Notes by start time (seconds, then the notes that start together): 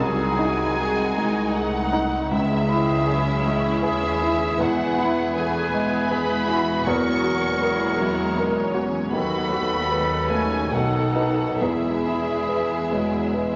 Already playing: C2 F#3 F#4
0.00 C2 D#3 D#4 G#4 G#5
0.37 D#4 E4
0.76 G#3 D#4 G#4
1.15 G#3 D#4
1.53 A3 D#4 G#4 F#5
1.93 D#4
2.30 C#2 E3 G#3 C#4 E4 G#4 E5
2.69 E4
3.07 F#3 G#4
3.45 E3 G#3
3.82 D#2 E3 G#3 G#4 E5
4.22 E4
4.58 E1 E2 E3 G#3 B3 E4 G#4 B4 F#5
4.98 B3 E4
5.35 E3 A3 E4 G#4 B4 G#5
5.74 G#3
6.11 E3 G#3 E4 G#4 B4 B5
6.48 E4 F#4
6.85 E1 E2 F#3 A#3 F#4 A#4 C#6
7.24 G#3 F#4
7.62 E4 G#4 A#4
7.98 F#3 A#4
8.37 D#4 A#4 C#5
8.74 C#4 F#4
9.12 D#2 F#3 B3 F#4 A4 B4 B5
9.51 A3 F#4
9.90 G#3 B3 D#4 B4
10.30 A3 C#4 G#5
10.72 B1 B2 D#3 F#3 D#4 A4 F#5
11.15 F#3 D#4 B4
11.59 E1 E2 E3 G#3 E4 G#4 E5
12.06 E4
12.49 E3 B4
12.92 F#3 G#3
13.34 G#3 B4